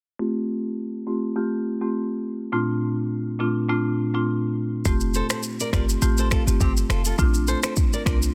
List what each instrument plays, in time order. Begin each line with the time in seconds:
0.19 marimba A3 C4 F4 G4
1.07 marimba A3 C4 F4 G4
1.36 marimba A3 C4 F4 G4
1.81 marimba A3 C4 F4 G4
2.52 marimba A#2 A3 C4 D4 F4
3.40 marimba A#2 A3 C4 D4 F4
3.69 marimba A#2 A3 C4 D4 F4
4.14 marimba A#2 A3 C4 D4 F4
4.85 808-style bass F1, marimba A3 C4 F4 G4, kick, shaker
5.01 shaker
5.14 nylon-string guitar A4 C5, shaker
5.30 nylon-string guitar A4 C5, finger snap, cross-stick, shaker
5.43 shaker
5.60 nylon-string guitar A#4 D5, shaker
5.73 808-style bass G1, marimba A3 C4 F4 G4, nylon-string guitar A#4 D5, finger snap, kick, cross-stick, shaker
5.89 shaker
6.02 808-style bass A1, marimba A3 C4 F4 G4, shaker
6.18 nylon-string guitar A4 C5, shaker
6.31 nylon-string guitar F4 A4, finger snap, kick, cross-stick, shaker
6.47 808-style bass G1, marimba A3 C4 F4 G4, shaker
6.60 808-style bass G1, nylon-string guitar C4 G4, kick, shaker
6.77 shaker
6.89 808-style bass F1, nylon-string guitar F4 A4, finger snap, cross-stick, shaker
7.05 nylon-string guitar F4 A4, shaker
7.18 808-style bass A#1, marimba A3 C4 D4 F4, kick, shaker
7.34 shaker
7.48 nylon-string guitar A4 C5, shaker
7.63 nylon-string guitar A4 C5, finger snap, cross-stick, shaker
7.76 kick, shaker
7.93 nylon-string guitar A#4 D5, shaker
8.06 808-style bass C2, marimba A3 C4 D4 F4, nylon-string guitar A#4 D5, finger snap, kick, cross-stick, shaker
8.22 shaker